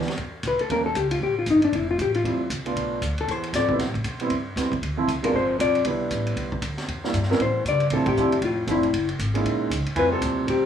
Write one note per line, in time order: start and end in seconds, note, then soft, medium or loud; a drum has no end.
0.00 0.17 D2 medium
0.00 snare soft
0.08 snare soft
0.08 ride soft
0.17 0.43 E2 medium
0.17 kick soft
0.17 ride soft
0.43 0.58 C2 medium
0.43 kick soft
0.43 hi-hat pedal soft
0.43 ride medium
0.48 0.61 B4 medium
0.59 0.70 A4 medium
0.59 muted upright bass stroke soft
0.59 ride soft
0.70 0.95 D#2 medium
0.70 0.84 F3 medium
0.70 0.84 G3 soft
0.70 0.84 A#3 medium
0.70 0.85 C#4 medium
0.70 0.86 A#4 medium
0.70 kick soft
0.70 ride medium
0.86 0.96 A4 medium
0.95 1.21 C#2 medium
0.95 1.11 G4 medium
0.95 kick soft
0.95 hi-hat pedal medium
0.95 ride medium
1.11 1.21 F4 medium
1.11 ride medium
1.21 1.46 A1 medium
1.21 1.37 G4 medium
1.21 kick soft
1.39 1.48 F4 medium
1.46 1.72 G1 medium
1.46 kick soft
1.46 hi-hat pedal medium
1.46 ride medium
1.50 1.64 D#4 medium
1.62 1.74 D4 medium
1.62 ride soft
1.72 1.98 F1 medium
1.72 1.89 E4 medium
1.72 kick soft
1.72 ride medium
1.91 2.00 F4 medium
1.98 2.24 A1 medium
1.98 2.15 G4 medium
1.98 kick soft
1.98 hi-hat pedal soft
1.98 ride medium
2.14 2.49 F4 medium
2.14 ride soft
2.24 2.49 E2 medium
2.24 2.38 G3 medium
2.24 2.39 A3 soft
2.24 2.39 C4 soft
2.24 2.39 E4 medium
2.24 kick soft
2.24 ride soft
2.50 2.75 C2 medium
2.50 kick soft
2.50 hi-hat pedal medium
2.50 ride medium
2.66 3.00 A3 medium
2.66 3.00 B3 soft
2.66 3.00 D4 medium
2.66 3.00 F4 medium
2.66 ride soft
2.76 3.01 B1 medium
2.76 kick soft
2.76 ride medium
3.01 3.27 D2 medium
3.01 kick soft
3.01 hi-hat pedal medium
3.01 ride medium
3.18 3.31 A4 medium
3.18 ride soft
3.27 3.52 E2 medium
3.27 3.54 E2 medium
3.27 3.55 C5 medium
3.27 kick soft
3.27 ride medium
3.43 ride soft
3.53 3.78 F2 medium
3.53 3.78 G#2 medium
3.53 3.79 D5 medium
3.53 kick soft
3.53 snare soft
3.53 hi-hat pedal medium
3.53 ride medium
3.69 3.79 G3 medium
3.69 3.79 B3 medium
3.69 3.79 C4 medium
3.69 3.79 E4 medium
3.69 kick soft
3.79 4.04 A2 medium
3.79 kick soft
3.79 snare soft
3.79 ride medium
3.94 kick soft
3.94 ride soft
4.04 4.30 B2 medium
4.04 kick soft
4.04 hi-hat pedal medium
4.04 ride medium
4.20 4.30 G3 medium
4.20 4.30 B3 medium
4.20 4.30 C4 medium
4.20 4.30 E4 medium
4.20 ride soft
4.30 4.55 G2 medium
4.30 kick soft
4.30 ride soft
4.56 4.81 E2 medium
4.56 4.70 G3 soft
4.56 4.71 B3 soft
4.56 4.71 C4 medium
4.56 4.71 E4 medium
4.56 kick soft
4.56 snare soft
4.56 hi-hat pedal medium
4.56 ride medium
4.72 kick soft
4.72 ride soft
4.82 5.07 D2 medium
4.82 kick soft
4.82 ride medium
4.97 5.07 F3 medium
4.97 5.07 A3 medium
4.97 5.07 C4 medium
4.97 5.07 E4 medium
5.07 5.33 C2 medium
5.07 kick soft
5.07 hi-hat pedal medium
5.07 ride medium
5.22 5.32 C2 medium
5.22 5.33 G#3 medium
5.22 5.33 B3 medium
5.22 5.33 D4 medium
5.22 5.33 F4 medium
5.22 5.34 A#4 medium
5.22 ride medium
5.32 5.58 G1 medium
5.32 5.57 F2 medium
5.32 5.59 C5 medium
5.32 kick soft
5.58 5.84 B1 medium
5.58 5.83 F2 medium
5.58 5.84 D5 medium
5.58 kick soft
5.58 hi-hat pedal soft
5.58 ride medium
5.75 ride soft
5.84 6.09 C2 medium
5.84 6.56 G3 medium
5.84 6.57 B3 medium
5.84 6.57 D4 medium
5.84 6.57 E4 medium
5.84 kick soft
5.84 ride medium
6.10 6.35 A1 medium
6.10 kick soft
6.10 hi-hat pedal medium
6.10 ride medium
6.26 ride soft
6.36 6.61 B1 medium
6.36 kick soft
6.36 ride medium
6.52 kick soft
6.62 6.87 D2 medium
6.62 kick soft
6.62 hi-hat pedal medium
6.62 ride medium
6.78 snare soft
6.78 ride soft
6.88 7.13 E2 medium
6.88 kick soft
6.88 ride medium
7.04 7.13 G3 medium
7.04 7.13 A#3 medium
7.04 7.14 D4 medium
7.04 7.14 E4 medium
7.04 snare soft
7.13 7.39 G2 medium
7.13 kick soft
7.13 hi-hat pedal soft
7.13 ride medium
7.23 snare soft
7.30 7.39 C2 medium
7.30 7.39 G3 medium
7.30 7.39 B3 medium
7.30 7.39 C#4 medium
7.30 7.39 E4 medium
7.30 7.40 A#4 medium
7.30 snare soft
7.39 7.64 E2 medium
7.39 7.64 A2 medium
7.39 7.65 C5 medium
7.39 kick soft
7.39 ride medium
7.65 7.85 G2 medium
7.65 7.90 C#3 medium
7.65 7.86 D5 medium
7.65 kick soft
7.65 hi-hat pedal soft
7.65 ride medium
7.80 ride soft
7.90 8.16 A2 medium
7.90 8.06 C3 medium
7.90 8.06 F3 medium
7.90 8.06 A3 medium
7.90 8.06 C4 medium
7.90 8.06 D4 medium
7.90 8.07 A4 medium
7.90 kick soft
7.90 ride medium
7.94 8.07 E4 medium
8.06 8.40 C3 medium
8.06 8.41 G4 medium
8.06 kick medium
8.06 ride medium
8.17 8.41 E2 medium
8.17 8.31 F3 medium
8.17 8.31 A3 medium
8.17 8.31 C4 medium
8.17 8.32 D4 medium
8.17 8.32 E4 medium
8.17 hi-hat pedal medium
8.32 ride soft
8.41 8.66 F2 medium
8.41 8.67 A2 soft
8.41 8.68 F4 medium
8.41 kick soft
8.41 ride medium
8.67 8.92 F1 medium
8.67 8.92 A2 medium
8.67 8.82 F3 medium
8.67 8.82 A3 medium
8.67 8.82 C4 medium
8.67 8.83 D4 medium
8.67 8.83 E4 medium
8.67 kick soft
8.67 hi-hat pedal medium
8.67 ride medium
8.71 9.08 E4 medium
8.83 ride soft
8.93 9.19 F#1 medium
8.93 kick soft
8.93 ride medium
9.09 ride soft
9.19 9.44 G#1 medium
9.19 kick soft
9.19 hi-hat pedal medium
9.19 ride medium
9.34 9.68 G#3 medium
9.34 9.69 A#3 medium
9.34 9.69 C#4 medium
9.34 9.69 D#4 medium
9.34 9.69 E4 medium
9.34 ride soft
9.44 9.70 A#1 medium
9.44 kick soft
9.44 ride medium
9.70 9.85 C#2 medium
9.70 kick soft
9.70 hi-hat pedal medium
9.70 ride medium
9.86 muted upright bass stroke soft
9.86 ride soft
9.96 10.21 F2 medium
9.96 10.10 E3 medium
9.96 10.66 G3 medium
9.96 10.66 A3 medium
9.96 10.66 C4 medium
9.96 10.66 E4 soft
9.96 10.66 F4 medium
9.96 10.13 B4 medium
9.96 kick soft
9.96 ride medium
10.11 10.45 C3 medium
10.11 10.46 A4 medium
10.21 10.47 D#2 medium
10.21 kick soft
10.21 hi-hat pedal medium
10.21 ride medium
10.47 10.66 E2 medium
10.47 10.66 C3 medium
10.47 10.66 G4 medium
10.47 kick soft
10.47 ride medium